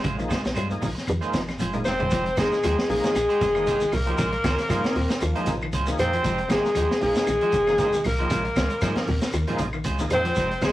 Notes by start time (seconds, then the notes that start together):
0.02 A#1 C#3 G#3 C#4 F4 C5, kick, closed hi-hat, shekere
0.18 F3 A#3 D#4 G#4, muted clean electric guitar stroke, closed hi-hat, shekere
0.28 G#3 C#4 F4 C5, kick, snare, closed hi-hat, high conga, claves, shekere
0.43 A#1, muted clean electric guitar stroke, snare, closed hi-hat, shekere
0.54 G2 G3 G#3 C#4 F4 C5, closed hi-hat, claves, shekere
0.69 F3 A#3 D#4 G#4, muted clean electric guitar stroke, closed hi-hat, high conga, shekere
0.82 A#1 F3, kick, open hi-hat, high conga, low conga, shekere
0.95 muted clean electric guitar stroke, snare, shekere
1.07 F2 D#3, muted clean electric guitar stroke, closed hi-hat, high conga, claves, shekere
1.20 F3 G#3 A#3 C#4 D#4 F4 G#4 C5, closed hi-hat, shekere
1.33 G#1 F3, kick, snare, closed hi-hat, high conga, shekere
1.48 muted clean electric guitar stroke, snare, high conga, claves, shekere
1.58 G1 F3 G#3 C#4 F4 C5, closed hi-hat, low conga, shekere
1.73 F3 G#3 A#3 D#4 G#4, muted clean electric guitar stroke, closed hi-hat, low conga, shekere
1.85 F1 C4 C5, muted clean electric guitar stroke, snare, low conga, claves, shekere
1.99 G#3 C#4 F4 C5, floor tom, low conga, shekere
2.10 F1 F3 G#3 D#4 G4 C5, kick, snare, closed hi-hat, shekere
2.26 muted clean electric guitar stroke, closed hi-hat
2.36 G#1 D#3 F3 G#3 A#3 D#4 G#4 C5, muted clean electric guitar stroke, kick, snare, closed hi-hat, high conga, claves, shekere
2.52 muted clean electric guitar stroke, snare, shekere
2.63 D#2 F3 G#3 D#4 G4 C5, snare, closed hi-hat, claves, shekere
2.78 muted clean electric guitar stroke, snare
2.89 A#1 C3 F3 G#3 A#3 D#4 G#4, open hi-hat, low conga, shekere
3.04 muted clean electric guitar stroke, snare, closed hi-hat, high conga, shekere
3.15 A#1, muted clean electric guitar stroke, closed hi-hat, claves, shekere
3.29 G#3 D#4 G4 C5, closed hi-hat
3.41 F1, kick, snare, closed hi-hat, high conga, shekere
3.54 D#3 F3 A#3 D#4 G#4, muted clean electric guitar stroke, claves, shekere
3.66 G#1 G#3 D#4 G4 C5, kick, closed hi-hat, shekere
3.81 D#3, muted clean electric guitar stroke, closed hi-hat, high conga, shekere
3.92 C2 A#4, muted clean electric guitar stroke, open hi-hat, low conga, claves, shekere
3.97 A#3
4.06 F3 A#3 D#4 G4 G#4 C5, closed hi-hat
4.18 A#1 F3 G#3 C#4 F4 C5, kick, snare, closed hi-hat, shekere
4.32 muted clean electric guitar stroke, closed hi-hat
4.44 C#2 D#3 F3 C#4 F4 C5, kick, snare, closed hi-hat, high conga, claves, shekere
4.58 G#3, muted clean electric guitar stroke, snare, closed hi-hat, shekere
4.69 G2 F3 G#3 A#3 C#4 D#4 F4 G#4 C5, kick, snare, closed hi-hat, claves, shekere
4.83 C4, muted clean electric guitar stroke, snare, closed hi-hat
4.95 D#2 A#2, open hi-hat, low conga, shekere
5.09 C4, muted clean electric guitar stroke, snare, high conga, shekere
5.21 D#2 D#3 F3, muted clean electric guitar stroke, closed hi-hat, claves, shekere
5.34 F3 G#3 A#3 C#4 D#4 F4 G#4 C5, closed hi-hat
5.46 A#1, kick, snare, closed hi-hat, high conga, shekere
5.61 D#3, muted clean electric guitar stroke, claves, shekere
5.73 C#2 G#3 C#4 F4 C5, kick, closed hi-hat, shekere
5.87 D#3 F3 A#3 D#4 G#4, muted clean electric guitar stroke, closed hi-hat, high conga, shekere
5.98 F2 C4 C5, muted clean electric guitar stroke, closed hi-hat, high conga, low conga, claves, shekere
6.13 F3 C#4 F4 C5, closed hi-hat
6.23 F1 F3 G#3 D#4 G4 C5, kick, closed hi-hat, shekere
6.38 muted clean electric guitar stroke, closed hi-hat
6.48 G#1 D#3 F3 G#3 A#3 D#4 G#4, kick, snare, closed hi-hat, high conga, claves, shekere
6.52 G#3 G4 C5
6.65 muted clean electric guitar stroke, snare, shekere
6.75 D#2 F3 G#3 D#4 G4 C5, closed hi-hat, claves, shekere
6.91 muted clean electric guitar stroke, snare
7.00 A#1 F3 A#3 D#4 G#4, open hi-hat, low conga, shekere
7.06 G#3
7.15 muted clean electric guitar stroke, snare, closed hi-hat, high conga, shekere
7.27 A#1 D#3, muted clean electric guitar stroke, closed hi-hat, claves, shekere
7.41 F3 G#3 D#4 G4 C5, closed hi-hat
7.52 F1, kick, snare, closed hi-hat, high conga, shekere
7.66 D#3 F3 A#3 D#4 G#4, muted clean electric guitar stroke, snare, claves, shekere
7.78 G#1 G#3 D#4 G4 C5, kick, snare, closed hi-hat, shekere
7.92 D#3, muted clean electric guitar stroke, closed hi-hat, high conga, shekere
8.04 C2 A#3 A#4, muted clean electric guitar stroke, open hi-hat, low conga, claves, shekere
8.19 F3 A#3 D#4 G4 G#4 C5, closed hi-hat
8.30 A#1 F3 G#3 C#4 F4 C5, kick, closed hi-hat, shekere
8.45 muted clean electric guitar stroke, closed hi-hat
8.56 C#2 D#3 G#3 C#4 F4, kick, snare, closed hi-hat, high conga, claves, shekere
8.70 muted clean electric guitar stroke, closed hi-hat, shekere
8.81 G2 F3 G#3 A#3 C#4 D#4 F4 G#4 C5, kick, snare, closed hi-hat, claves, shekere
8.96 muted clean electric guitar stroke, snare, closed hi-hat, high conga
9.07 D#2 C3, open hi-hat, low conga, shekere
9.22 muted clean electric guitar stroke, snare, high conga, shekere
9.32 D#2 D#3, muted clean electric guitar stroke, closed hi-hat, claves, shekere
9.47 F3 G#3 A#3 C#4 D#4 F4 G#4 C5, closed hi-hat, low conga
9.58 A#1, kick, closed hi-hat, high conga, shekere
9.73 D#3, muted clean electric guitar stroke, claves, shekere
9.84 C#2 G#3 C#4 F4 C5, kick, closed hi-hat, high conga, shekere
9.99 D#3 F3 A#3 D#4 G#4, muted clean electric guitar stroke, closed hi-hat, high conga, shekere
10.10 F2 C5, muted clean electric guitar stroke, closed hi-hat, low conga, claves, shekere
10.14 C4
10.24 F3 C#4 F4 C5, closed hi-hat, low conga
10.35 F1 F3 G#3 D#4 G4 C5, kick, closed hi-hat, shekere
10.50 muted clean electric guitar stroke, closed hi-hat
10.62 G#1 D#3 F3 G#3 A#3 D#4 G#4 C5, kick, snare, closed hi-hat, high conga, claves, shekere
10.67 G#3